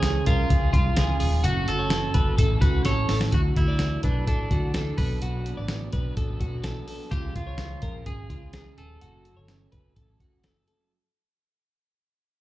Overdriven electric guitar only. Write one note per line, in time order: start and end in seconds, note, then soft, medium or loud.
0.02 0.26 C#3 medium
0.02 0.27 F3 medium
0.02 0.27 G#3 medium
0.02 0.26 C#4 medium
0.27 0.49 F3 soft
0.27 0.50 G#3 medium
0.27 0.50 C#4 medium
0.50 0.73 C#3 medium
0.50 0.74 F3 medium
0.50 0.74 G#3 medium
0.50 0.72 C#4 medium
0.73 0.96 F3 medium
0.73 0.97 G#3 medium
0.73 0.97 C#4 medium
0.96 1.20 C#3 medium
0.96 1.21 F3 medium
0.96 1.20 G#3 medium
0.96 1.18 C#4 medium
1.20 1.44 F3 soft
1.20 1.45 G#3 medium
1.20 1.44 C#4 medium
1.43 1.67 F#2 medium
1.43 1.68 C#3 loud
1.43 1.68 F#3 loud
1.43 1.68 A3 loud
1.43 1.67 C#4 loud
1.68 1.91 F#3 soft
1.68 1.92 A3 soft
1.68 1.91 C#4 medium
1.91 2.15 C#3 medium
1.91 2.15 F#3 medium
1.91 2.15 A3 medium
1.91 2.14 C#4 medium
2.15 2.40 F#3 medium
2.15 2.39 A3 medium
2.15 2.38 C#4 medium
2.39 2.62 A2 medium
2.39 2.63 E3 medium
2.39 2.63 A3 medium
2.39 2.62 C#4 loud
2.39 2.60 E4 medium
2.62 2.86 A3 medium
2.62 2.86 C#4 medium
2.62 2.85 E4 medium
2.85 3.09 E3 medium
2.85 3.10 A3 medium
2.85 3.10 C#4 medium
2.85 3.08 E4 medium
3.10 3.33 A3 soft
3.10 3.34 C#4 medium
3.10 3.33 E4 medium
3.33 3.56 D3 medium
3.33 3.57 F#3 medium
3.33 3.56 A3 medium
3.33 3.55 E4 medium
3.56 3.80 F#3 soft
3.56 3.81 A3 soft
3.56 3.80 E4 soft
3.80 4.04 D3 medium
3.80 4.04 F#3 medium
3.80 4.04 A3 medium
3.80 4.02 E4 medium
4.04 4.27 F#3 soft
4.04 4.28 A3 soft
4.04 4.27 E4 soft
4.28 4.51 D3 medium
4.28 4.52 F#3 medium
4.28 4.51 A3 medium
4.28 4.50 E4 medium
4.51 4.75 F#3 soft
4.51 4.75 A3 medium
4.51 4.75 E4 medium
4.75 4.98 D3 medium
4.75 4.99 F#3 medium
4.75 4.99 A3 medium
4.75 4.99 E4 medium
4.99 5.22 F#3 soft
4.99 5.22 B3 soft
4.99 5.22 D4 medium
5.23 5.46 B2 medium
5.23 5.46 F#3 medium
5.23 5.46 B3 medium
5.23 5.45 D4 medium
5.46 5.69 F#3 soft
5.46 5.70 B3 soft
5.46 5.69 D4 medium
5.69 5.93 B2 medium
5.69 5.93 F#3 medium
5.69 5.94 B3 medium
5.69 5.92 D4 medium
5.93 6.16 F#3 soft
5.93 6.17 B3 medium
5.93 6.17 D4 medium
6.17 6.40 B2 medium
6.17 6.41 F#3 medium
6.17 6.40 B3 medium
6.17 6.39 D4 medium
6.40 6.64 F#3 medium
6.40 6.65 B3 medium
6.40 6.64 D4 medium
6.64 6.88 B2 medium
6.64 6.88 F#3 medium
6.64 6.88 B3 medium
6.64 6.86 D4 medium
6.87 7.12 F#3 soft
6.87 7.12 B3 soft
6.87 7.11 D4 medium
7.12 7.35 C#3 medium
7.12 7.36 F3 medium
7.12 7.35 G#3 medium
7.12 7.33 C#4 medium
7.34 7.58 F3 soft
7.34 7.59 G#3 soft
7.34 7.59 C#4 soft
7.58 7.82 C#3 medium
7.58 7.83 F3 medium
7.58 7.82 G#3 medium
7.58 7.80 C#4 medium
7.81 8.05 F3 soft
7.81 8.06 G#3 soft
7.81 8.06 C#4 medium
8.06 8.30 C#3 medium
8.06 8.30 F3 medium
8.06 8.30 G#3 medium
8.06 8.28 C#4 medium
8.29 8.54 F3 soft
8.29 8.54 G#3 soft
8.29 8.53 C#4 soft
8.54 8.77 C#3 medium
8.54 8.78 F3 medium
8.54 8.78 G#3 medium
8.54 8.77 C#4 medium
8.78 9.03 F3 soft
8.78 9.02 G#3 soft
8.78 9.01 C#4 medium
9.02 9.25 F#2 medium
9.02 9.26 C#3 medium
9.02 9.26 F#3 medium
9.02 9.26 A3 medium
9.02 9.24 C#4 medium
9.25 9.48 F#3 soft
9.25 9.50 A3 soft
9.25 9.49 C#4 soft
9.48 9.72 C#3 medium
9.48 9.73 F#3 medium
9.48 9.73 A3 medium
9.48 9.71 C#4 medium
9.73 9.96 F#3 soft
9.73 9.97 A3 soft
9.73 9.96 C#4 soft
9.96 10.20 F#2 medium
9.96 10.20 C#3 medium
9.96 10.21 F#3 medium
9.96 10.20 A3 medium
9.96 10.19 C#4 medium
10.20 10.43 F#3 soft
10.20 10.44 A3 soft
10.20 10.44 C#4 medium
10.43 10.67 C#3 medium
10.43 10.68 F#3 medium
10.43 10.68 A3 medium
10.43 10.67 C#4 medium
10.68 10.93 F#3 soft
10.68 10.92 A3 soft
10.68 10.91 C#4 medium